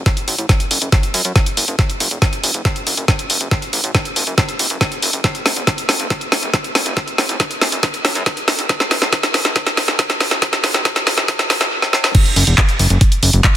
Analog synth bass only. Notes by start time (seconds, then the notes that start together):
0.28 A1
0.38 A1
0.71 F#1
0.82 F#1
1.14 F#2
1.25 F#2
1.57 F#1
1.68 F#1
2.00 F#1
2.11 E1
2.43 F#1
2.54 F#1
2.87 F#1
2.97 F#1
3.30 F#1
3.41 F#1
3.73 A1
3.84 A1
4.16 F#1
4.27 F#1
4.59 F#1
4.70 F#1
5.02 F#1
5.13 F#1
5.46 F#1
5.56 E1
5.89 F#1
6.00 F#1
6.32 F#1
6.43 F#1
6.75 F#1
6.86 F#1
7.18 A1
7.29 A1
7.61 F#1
7.72 F#1
8.05 F#2
8.15 F#2
8.48 F#1
8.59 F#1
8.91 F#1
9.02 E1
9.34 F#1
9.45 F#1
9.88 F#1
10.20 F#1
10.31 F#1
10.64 A1
10.74 A1
11.07 F#1
11.18 F#1
11.50 F#1
12.36 F#1
12.47 E1
12.79 F#1
12.90 F#1
13.23 F#1
13.33 F#1